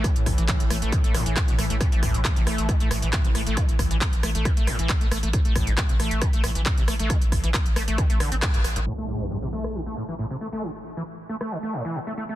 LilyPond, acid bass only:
\new Staff \with { instrumentName = "Acid bass" } { \clef bass \time 4/4 \key c \major \tempo 4 = 136 d16 r8 e16 r8 a16 a16 d16 a16 a,16 e16 a,16 b,16 a16 a16 | a,16 a16 a,16 g,16 g,16 c16 a8 d16 a16 a,16 e16 a,16 c16 a16 a16 | d16 r8 e16 r8 a16 a16 d16 a16 a,16 e16 a,16 a16 a16 a16 | a,16 a16 a,16 g,16 g,16 c16 a8 d16 a16 a,16 e16 a,16 c16 a16 a16 |
d16 r8 e16 r8 a16 a16 d16 a16 d16 c'16 a,16 g,16 r16 g,16 | a,16 a16 a,16 g,16 g,16 c16 a8 d16 a16 a,16 e16 a,16 c16 a16 a16 | d16 r8 e16 r8 a16 a16 d16 a16 a,16 e16 a,16 a16 a16 a16 | }